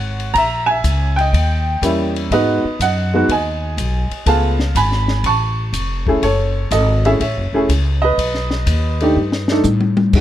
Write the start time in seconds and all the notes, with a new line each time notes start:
Already playing: G#1 C#5 F#5
0.20 ride
0.34 A#1 A#5, kick, ride
0.38 E5
0.66 G#5
0.71 E5
0.84 C#2, kick, hi-hat pedal, ride
1.16 G5, ride
1.21 D#5
1.33 D#2, kick, ride
1.82 E2 G3 A#3 C#4 E4, kick, hi-hat pedal, ride
2.16 ride
2.31 G#2 G#3 B3 D#4 F#4 B4 D#5, kick, ride
2.64 muted upright bass stroke
2.79 F#2 D#5 F#5, kick, hi-hat pedal, ride
3.14 G#3 B3 D#4 F#4
3.28 D#2 G#5, kick, ride
3.33 D#5
3.77 B1, kick, hi-hat pedal, ride
4.11 muted upright bass stroke, ride
4.26 C#2 A3 B3 F4 G#4 F5 A5, kick, ride
4.59 snare
4.75 G#1 G#5 B5, kick, hi-hat pedal, ride
4.92 snare
5.08 snare
5.24 A1 A5 C#6, kick, ride
5.73 F1, kick, hi-hat pedal, ride
6.07 A3 C#4 E4 G#4, kick
6.22 F#1 A4 C#5, kick, ride
6.71 G#1 A4 D#5, kick, hi-hat pedal, ride
7.05 A3 C#4 E4 G#4 C#5 E5, ride
7.20 A1 C#5 E5, kick, ride
7.36 F#1
7.53 E1 A3 C#4 E4 G#4
7.69 C#2, kick, hi-hat pedal, ride
8.02 B4 D#5
8.18 B1, kick, ride
8.34 snare
8.51 snare
8.66 D#2, kick, hi-hat pedal, ride
9.00 A3 D4 D#4 G4, ride
9.16 G2
9.32 snare
9.48 A3 D4 D#4, snare
9.52 A4
9.64 A2, hi-hat pedal, high tom
9.81 high tom
9.97 high tom
10.13 F#2 G#3 C#4 D#4 F#4, kick, crash